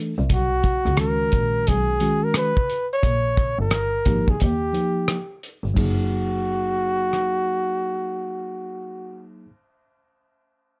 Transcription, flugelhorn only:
0, 0, Header, 1, 2, 480
1, 0, Start_track
1, 0, Key_signature, 6, "major"
1, 0, Tempo, 681818
1, 216, Time_signature, 4, 2, 24, 8
1, 7603, End_track
2, 0, Start_track
2, 0, Title_t, "Flugelhorn"
2, 0, Program_c, 0, 56
2, 232, Note_on_c, 0, 66, 82
2, 676, Note_off_c, 0, 66, 0
2, 703, Note_on_c, 0, 70, 90
2, 1184, Note_on_c, 0, 68, 91
2, 1194, Note_off_c, 0, 70, 0
2, 1578, Note_on_c, 0, 70, 78
2, 1588, Note_off_c, 0, 68, 0
2, 1662, Note_off_c, 0, 70, 0
2, 1670, Note_on_c, 0, 71, 88
2, 2026, Note_off_c, 0, 71, 0
2, 2063, Note_on_c, 0, 73, 97
2, 2507, Note_off_c, 0, 73, 0
2, 2541, Note_on_c, 0, 70, 90
2, 3027, Note_on_c, 0, 68, 74
2, 3038, Note_off_c, 0, 70, 0
2, 3117, Note_on_c, 0, 67, 80
2, 3127, Note_off_c, 0, 68, 0
2, 3827, Note_off_c, 0, 67, 0
2, 4081, Note_on_c, 0, 66, 82
2, 6524, Note_off_c, 0, 66, 0
2, 7603, End_track
0, 0, End_of_file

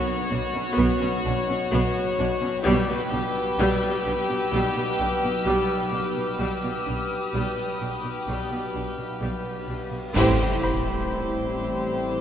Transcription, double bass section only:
0, 0, Header, 1, 2, 480
1, 0, Start_track
1, 0, Tempo, 937500
1, 1358, Time_signature, 4, 2, 24, 8
1, 6251, End_track
2, 0, Start_track
2, 0, Title_t, "Double bass section"
2, 0, Program_c, 0, 48
2, 158, Note_on_c, 0, 35, 67
2, 199, Note_off_c, 0, 35, 0
2, 397, Note_on_c, 0, 35, 97
2, 438, Note_off_c, 0, 35, 0
2, 639, Note_on_c, 0, 35, 74
2, 680, Note_off_c, 0, 35, 0
2, 879, Note_on_c, 0, 35, 91
2, 920, Note_off_c, 0, 35, 0
2, 1117, Note_on_c, 0, 35, 72
2, 1158, Note_off_c, 0, 35, 0
2, 1361, Note_on_c, 0, 35, 88
2, 1402, Note_off_c, 0, 35, 0
2, 1600, Note_on_c, 0, 35, 73
2, 1641, Note_off_c, 0, 35, 0
2, 1835, Note_on_c, 0, 35, 89
2, 1876, Note_off_c, 0, 35, 0
2, 2077, Note_on_c, 0, 35, 60
2, 2118, Note_off_c, 0, 35, 0
2, 2318, Note_on_c, 0, 35, 84
2, 2359, Note_off_c, 0, 35, 0
2, 2557, Note_on_c, 0, 35, 62
2, 2598, Note_off_c, 0, 35, 0
2, 2794, Note_on_c, 0, 35, 70
2, 2835, Note_off_c, 0, 35, 0
2, 3034, Note_on_c, 0, 35, 55
2, 3075, Note_off_c, 0, 35, 0
2, 3273, Note_on_c, 0, 35, 59
2, 3314, Note_off_c, 0, 35, 0
2, 3517, Note_on_c, 0, 35, 50
2, 3558, Note_off_c, 0, 35, 0
2, 3756, Note_on_c, 0, 35, 67
2, 3797, Note_off_c, 0, 35, 0
2, 3998, Note_on_c, 0, 35, 43
2, 4039, Note_off_c, 0, 35, 0
2, 4236, Note_on_c, 0, 35, 58
2, 4277, Note_off_c, 0, 35, 0
2, 4476, Note_on_c, 0, 35, 41
2, 4517, Note_off_c, 0, 35, 0
2, 4716, Note_on_c, 0, 35, 57
2, 4757, Note_off_c, 0, 35, 0
2, 4957, Note_on_c, 0, 35, 42
2, 4998, Note_off_c, 0, 35, 0
2, 5195, Note_on_c, 0, 33, 87
2, 6251, Note_off_c, 0, 33, 0
2, 6251, End_track
0, 0, End_of_file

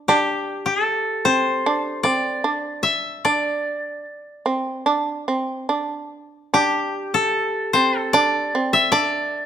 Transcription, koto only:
0, 0, Header, 1, 2, 480
1, 0, Start_track
1, 0, Tempo, 792602
1, 44, Time_signature, 4, 2, 24, 8
1, 2445, Tempo, 827586
1, 4365, Tempo, 795756
1, 5638, End_track
2, 0, Start_track
2, 0, Title_t, "Koto"
2, 0, Program_c, 0, 107
2, 50, Note_on_c, 0, 67, 62
2, 398, Note_on_c, 0, 69, 63
2, 757, Note_on_c, 0, 72, 71
2, 1232, Note_on_c, 0, 74, 64
2, 1285, Note_off_c, 0, 67, 0
2, 1551, Note_off_c, 0, 69, 0
2, 1713, Note_on_c, 0, 76, 65
2, 1796, Note_off_c, 0, 72, 0
2, 1963, Note_off_c, 0, 74, 0
2, 1966, Note_on_c, 0, 74, 62
2, 2610, Note_off_c, 0, 76, 0
2, 3385, Note_off_c, 0, 74, 0
2, 3896, Note_on_c, 0, 67, 67
2, 4245, Note_on_c, 0, 69, 65
2, 4598, Note_on_c, 0, 72, 72
2, 4754, Note_off_c, 0, 69, 0
2, 4754, Note_off_c, 0, 72, 0
2, 4754, Note_on_c, 0, 69, 72
2, 4838, Note_on_c, 0, 74, 74
2, 5108, Note_off_c, 0, 67, 0
2, 5200, Note_on_c, 0, 76, 74
2, 5309, Note_off_c, 0, 74, 0
2, 5312, Note_on_c, 0, 74, 77
2, 5632, Note_off_c, 0, 69, 0
2, 5638, Note_off_c, 0, 74, 0
2, 5638, Note_off_c, 0, 76, 0
2, 5638, End_track
0, 0, End_of_file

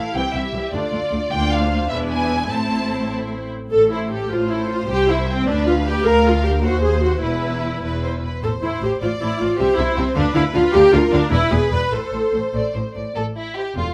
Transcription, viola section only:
0, 0, Header, 1, 2, 480
1, 0, Start_track
1, 0, Key_signature, 0, "minor"
1, 0, Tempo, 389610
1, 182, Time_signature, 6, 3, 24, 8
1, 2583, Tempo, 402955
1, 4983, Tempo, 388350
1, 8343, Tempo, 400534
1, 10263, Tempo, 385356
1, 13623, Tempo, 404040
1, 16960, End_track
2, 0, Start_track
2, 0, Title_t, "Viola section"
2, 0, Program_c, 0, 48
2, 184, Note_on_c, 0, 60, 46
2, 189, Note_on_c, 0, 52, 45
2, 403, Note_off_c, 0, 60, 0
2, 406, Note_off_c, 0, 52, 0
2, 428, Note_on_c, 0, 60, 36
2, 433, Note_on_c, 0, 52, 31
2, 521, Note_off_c, 0, 60, 0
2, 525, Note_off_c, 0, 52, 0
2, 665, Note_on_c, 0, 52, 33
2, 668, Note_on_c, 0, 55, 39
2, 759, Note_off_c, 0, 52, 0
2, 761, Note_off_c, 0, 55, 0
2, 900, Note_on_c, 0, 62, 50
2, 901, Note_on_c, 0, 57, 50
2, 1121, Note_off_c, 0, 57, 0
2, 1121, Note_off_c, 0, 62, 0
2, 1137, Note_on_c, 0, 62, 39
2, 1144, Note_on_c, 0, 57, 39
2, 1233, Note_off_c, 0, 62, 0
2, 1238, Note_off_c, 0, 57, 0
2, 1381, Note_on_c, 0, 57, 46
2, 1477, Note_off_c, 0, 57, 0
2, 1615, Note_on_c, 0, 62, 51
2, 1617, Note_on_c, 0, 58, 46
2, 2291, Note_off_c, 0, 62, 0
2, 2292, Note_off_c, 0, 58, 0
2, 2342, Note_on_c, 0, 59, 52
2, 2345, Note_on_c, 0, 62, 53
2, 3047, Note_off_c, 0, 59, 0
2, 3049, Note_off_c, 0, 62, 0
2, 3054, Note_on_c, 0, 60, 46
2, 3058, Note_on_c, 0, 57, 45
2, 4242, Note_off_c, 0, 60, 0
2, 4269, Note_off_c, 0, 57, 0
2, 4498, Note_on_c, 0, 69, 76
2, 4725, Note_off_c, 0, 69, 0
2, 4747, Note_on_c, 0, 64, 58
2, 4979, Note_off_c, 0, 64, 0
2, 4981, Note_on_c, 0, 67, 66
2, 5221, Note_off_c, 0, 67, 0
2, 5221, Note_on_c, 0, 65, 69
2, 5457, Note_on_c, 0, 64, 70
2, 5467, Note_off_c, 0, 65, 0
2, 5703, Note_on_c, 0, 65, 72
2, 5706, Note_off_c, 0, 64, 0
2, 5938, Note_on_c, 0, 67, 88
2, 5945, Note_off_c, 0, 65, 0
2, 6183, Note_off_c, 0, 67, 0
2, 6189, Note_on_c, 0, 64, 78
2, 6431, Note_on_c, 0, 60, 79
2, 6432, Note_off_c, 0, 64, 0
2, 6667, Note_off_c, 0, 60, 0
2, 6683, Note_on_c, 0, 62, 88
2, 6903, Note_on_c, 0, 65, 82
2, 6917, Note_off_c, 0, 62, 0
2, 6999, Note_off_c, 0, 65, 0
2, 7148, Note_on_c, 0, 67, 88
2, 7381, Note_off_c, 0, 67, 0
2, 7387, Note_on_c, 0, 70, 91
2, 7620, Note_on_c, 0, 65, 80
2, 7626, Note_off_c, 0, 70, 0
2, 7856, Note_on_c, 0, 67, 74
2, 7862, Note_off_c, 0, 65, 0
2, 7954, Note_off_c, 0, 67, 0
2, 8092, Note_on_c, 0, 66, 82
2, 8333, Note_off_c, 0, 66, 0
2, 8339, Note_on_c, 0, 68, 78
2, 8573, Note_off_c, 0, 68, 0
2, 8577, Note_on_c, 0, 66, 66
2, 8801, Note_on_c, 0, 64, 65
2, 8813, Note_off_c, 0, 66, 0
2, 9991, Note_off_c, 0, 64, 0
2, 10270, Note_on_c, 0, 69, 70
2, 10366, Note_off_c, 0, 69, 0
2, 10509, Note_on_c, 0, 64, 66
2, 10748, Note_off_c, 0, 64, 0
2, 10761, Note_on_c, 0, 67, 68
2, 10857, Note_off_c, 0, 67, 0
2, 11003, Note_on_c, 0, 65, 73
2, 11097, Note_off_c, 0, 65, 0
2, 11238, Note_on_c, 0, 64, 71
2, 11462, Note_on_c, 0, 65, 75
2, 11467, Note_off_c, 0, 64, 0
2, 11694, Note_on_c, 0, 67, 85
2, 11701, Note_off_c, 0, 65, 0
2, 11930, Note_on_c, 0, 64, 81
2, 11936, Note_off_c, 0, 67, 0
2, 12174, Note_off_c, 0, 64, 0
2, 12176, Note_on_c, 0, 60, 79
2, 12417, Note_off_c, 0, 60, 0
2, 12423, Note_on_c, 0, 62, 91
2, 12643, Note_on_c, 0, 64, 92
2, 12656, Note_off_c, 0, 62, 0
2, 12742, Note_off_c, 0, 64, 0
2, 12893, Note_on_c, 0, 65, 90
2, 13128, Note_on_c, 0, 67, 104
2, 13132, Note_off_c, 0, 65, 0
2, 13366, Note_on_c, 0, 65, 88
2, 13375, Note_off_c, 0, 67, 0
2, 13612, Note_on_c, 0, 62, 93
2, 13617, Note_off_c, 0, 65, 0
2, 13850, Note_on_c, 0, 64, 92
2, 13854, Note_off_c, 0, 62, 0
2, 14084, Note_on_c, 0, 68, 86
2, 14088, Note_off_c, 0, 64, 0
2, 14327, Note_on_c, 0, 71, 74
2, 14330, Note_off_c, 0, 68, 0
2, 14568, Note_off_c, 0, 71, 0
2, 14577, Note_on_c, 0, 69, 67
2, 15311, Note_off_c, 0, 69, 0
2, 16753, Note_on_c, 0, 57, 50
2, 16960, Note_off_c, 0, 57, 0
2, 16960, End_track
0, 0, End_of_file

